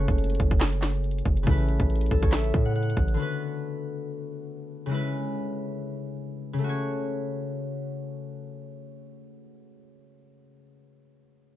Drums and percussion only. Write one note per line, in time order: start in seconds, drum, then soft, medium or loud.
0.08 kick medium
0.08 closed hi-hat medium
0.18 closed hi-hat medium
0.24 closed hi-hat medium
0.30 closed hi-hat medium
0.35 closed hi-hat medium
0.40 kick medium
0.40 closed hi-hat medium
0.51 kick loud
0.51 closed hi-hat medium
0.60 snare loud
0.60 clap loud
0.60 closed hi-hat medium
0.73 closed hi-hat medium
0.82 snare medium
0.82 clap medium
0.82 closed hi-hat medium
1.04 closed hi-hat soft
1.11 closed hi-hat medium
1.18 closed hi-hat medium
1.25 kick medium
1.25 closed hi-hat medium
1.37 closed hi-hat medium
1.47 kick loud
1.47 closed hi-hat medium
1.58 closed hi-hat soft
1.68 closed hi-hat medium
1.80 kick medium
1.80 closed hi-hat medium
1.90 closed hi-hat medium
1.95 closed hi-hat medium
2.01 closed hi-hat medium
2.06 closed hi-hat medium
2.11 kick medium
2.11 closed hi-hat medium
2.23 kick loud
2.23 closed hi-hat medium
2.32 snare loud
2.32 clap loud
2.32 closed hi-hat medium
2.44 closed hi-hat medium
2.54 kick loud
2.54 closed hi-hat medium
2.75 closed hi-hat soft
2.83 closed hi-hat medium
2.90 closed hi-hat medium
2.97 kick medium
2.97 closed hi-hat medium
3.08 closed hi-hat medium